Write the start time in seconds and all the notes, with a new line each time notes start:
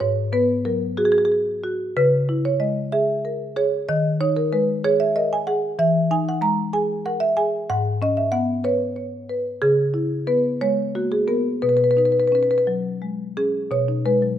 0.00 G#2 C#5
0.32 B3 B4
0.65 F#3 A#4
0.97 F#4 G#4
1.05 G#4
1.12 G#4
1.18 G#4
1.25 G#4
1.32 G#4
1.64 F#4
1.97 C#3 B4
2.29 E4
2.45 C#5
2.60 G#3 D#5
2.92 G#4 E5
3.25 A#4
3.56 G#4 C#5
3.89 D#3 D#5
4.21 D#4 C#5
4.37 A#4
4.53 G#3 B4
4.84 G#4 C#5
5.00 E5
5.16 A#4 D#5
5.33 G#5
5.47 G#4 F#5
5.79 E3 E5
6.11 D#4 G#5
6.29 F#5
6.41 G#3 A#5
6.73 G#4 G#5
7.06 A#4 F#5
7.20 E5
7.37 G#4 G#5
7.70 G#2 F#5
8.02 C#4 D#5
8.17 E5
8.32 B3 F#5
8.64 B4 C#5
8.96 C#5
9.29 B4
9.62 C#3 G#4
9.94 E4
10.27 B3 B4
10.61 G#3 C#5
10.95 A#3 F#4
11.12 G#4
11.27 B3 A#4
11.62 B2 B4
11.69 B4
11.77 B4
11.84 B4
11.91 B4
11.97 D#4 B4
12.06 B4
12.12 B4
12.20 B4
12.28 B4
12.32 C#4 B4
12.43 B4
12.51 B4
12.58 B4
12.67 F#3
13.02 G#3
13.37 C#4 G#4
13.71 B2 C#5
13.88 D#4
14.05 G#3 B4
14.22 F#3